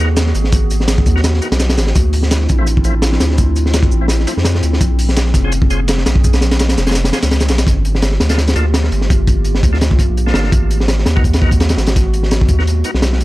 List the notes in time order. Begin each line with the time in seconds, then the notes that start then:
Already playing: A#3 B3 F#4 G#4
0.00 D#2
0.17 snare, closed hi-hat, shaker
0.27 snare
0.35 G#1, closed hi-hat, shaker
0.44 snare
0.52 kick, closed hi-hat, shaker
0.70 closed hi-hat, shaker
0.80 snare
0.88 snare, closed hi-hat, shaker
0.98 kick, closed hi-hat
1.06 D#2, kick, closed hi-hat, shaker
1.16 B3 D#4 F#4 A#4, snare
1.24 snare, closed hi-hat, shaker
1.34 snare
1.42 B3 D#4 F#4 A#4, closed hi-hat, shaker
1.51 B1, snare, closed hi-hat
1.60 snare, closed hi-hat, shaker
1.69 snare, closed hi-hat
1.77 G#1, snare, closed hi-hat, shaker
1.87 snare
1.95 D2 C4 D4 E4 F4, kick, closed hi-hat, shaker
2.13 closed hi-hat, open hi-hat
2.23 snare
2.31 snare, closed hi-hat, shaker
2.41 snare
2.49 A1, kick, closed hi-hat, shaker
2.59 F3 A3 C4 E4
2.67 closed hi-hat, shaker
2.77 kick
2.84 A1 F3 A3 C4 E4, closed hi-hat, shaker
3.02 snare, closed hi-hat, shaker
3.13 snare
3.20 D2, snare, closed hi-hat, shaker
3.30 snare
3.38 kick, closed hi-hat, shaker
3.56 closed hi-hat, shaker
3.66 snare
3.74 snare, closed hi-hat, shaker
3.83 kick, closed hi-hat
3.92 A1, shaker
4.01 F3 A3 C4 E4
4.08 snare, closed hi-hat, shaker
4.20 snare
4.27 F3 A3 C4 E4, snare, closed hi-hat, shaker
4.37 F2, snare
4.45 snare, closed hi-hat, shaker
4.55 snare
4.63 D2, closed hi-hat, shaker
4.73 snare
4.81 A#1 A#3 C#4 G#4, kick, closed hi-hat, shaker
4.99 closed hi-hat, open hi-hat
5.09 snare
5.17 snare, closed hi-hat, shaker
5.26 snare
5.34 F1, kick, snare, closed hi-hat, shaker
5.44 C#4 F4 G#4 C5
5.52 closed hi-hat, shaker
5.62 kick
5.70 F1 C#4 F4 G#4 C5, closed hi-hat, shaker
5.88 snare, closed hi-hat, shaker
5.98 snare
6.06 A#1, snare, closed hi-hat, shaker
6.16 kick
6.24 kick, closed hi-hat, shaker
6.33 snare, closed hi-hat
6.41 snare, closed hi-hat, shaker
6.51 snare, closed hi-hat
6.59 snare, closed hi-hat, shaker
6.69 snare, closed hi-hat
6.77 F1, snare, closed hi-hat, shaker
6.87 C#4 F4 G#4 C5, snare, closed hi-hat
6.91 snare, closed hi-hat
6.94 snare, closed hi-hat, shaker
7.04 snare, closed hi-hat
7.13 C#4 F4 G#4 C5, snare, closed hi-hat, shaker
7.23 C#2, snare, closed hi-hat, shaker
7.31 snare, closed hi-hat
7.40 snare, closed hi-hat, shaker
7.48 A#1, snare, closed hi-hat, shaker
7.58 snare, closed hi-hat, shaker
7.66 G1 A3 A#3 F4 G4, kick, closed hi-hat
7.85 closed hi-hat
7.95 snare
8.02 snare, closed hi-hat
8.11 snare
8.20 D2, snare, closed hi-hat
8.29 A#3 D4 F4 A4, snare, closed hi-hat
8.38 snare, closed hi-hat
8.48 snare, closed hi-hat
8.56 D2 A#3 D4 F4 A4, closed hi-hat
8.74 snare, closed hi-hat
8.84 snare
8.92 G1, closed hi-hat
9.01 snare
9.10 kick, closed hi-hat
9.27 kick, closed hi-hat
9.45 closed hi-hat
9.55 snare
9.63 D2, kick, closed hi-hat
9.73 A#3 D4 F4 A4, snare
9.81 snare, closed hi-hat
9.91 kick
9.99 kick, closed hi-hat
10.09 A#1
10.17 closed hi-hat
10.26 A#3 D4 F4 A4, snare
10.34 G1, snare, closed hi-hat
10.44 snare
10.52 G#1 G#3 B3 F#4, kick, closed hi-hat
10.71 closed hi-hat
10.80 snare
10.88 snare, closed hi-hat
10.98 snare
11.06 D#2, snare, closed hi-hat
11.16 B3 D#4 F#4 A#4, kick
11.24 kick, closed hi-hat
11.33 snare, closed hi-hat
11.42 D#2 B3 D#4 F#4 A#4, kick
11.51 kick, closed hi-hat
11.60 snare, closed hi-hat
11.69 snare, closed hi-hat
11.77 G#1, snare, closed hi-hat
11.87 snare, closed hi-hat
11.96 kick, closed hi-hat
12.13 closed hi-hat
12.23 snare
12.31 snare, closed hi-hat
12.41 kick
12.48 D#2, kick, closed hi-hat
12.59 B3 D#4 F#4 A#4, snare
12.67 closed hi-hat
12.84 B3 D#4 F#4 A#4, closed hi-hat
12.94 B1, snare
13.02 snare, closed hi-hat
13.13 snare
13.20 G#1, closed hi-hat